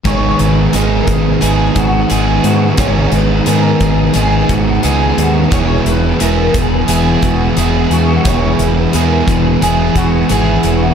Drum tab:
HH |xxxxxxxx|xxxxxxxx|xxxxxxxx|xxxxxxxx|
BD |o--o-o--|o--o-o--|o--o-o--|o--o-o--|